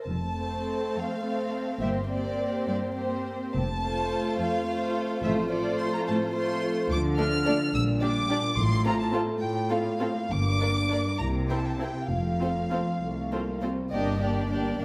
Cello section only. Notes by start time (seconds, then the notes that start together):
0.07 F2
0.94 F2
1.79 G2
2.65 G2
3.54 F2
4.39 F2
5.22 A2
6.06 A2
6.90 D3
7.74 A#2
8.56 A2
9.40 A2
10.29 G2
11.19 C3
12.08 F2
12.99 C2
13.91 G2
14.78 G2